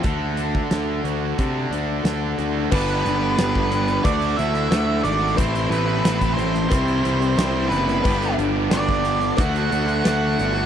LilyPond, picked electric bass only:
\new Staff \with { instrumentName = "Picked electric bass" } { \clef bass \time 4/4 \key d \dorian \tempo 4 = 90 d,4 d,8 d,8 c8 d,8 d,8 d,8 | \key g \major g,,8 g,,8 g,,4 d,8 d,8 d,8 aes,,8 | a,,8 a,,8 a,,8 a,,8 c,8 c,8 c,8 fis,,8 | g,,8 g,,8 g,,4 d,8 d,8 d,8 g,,8 | }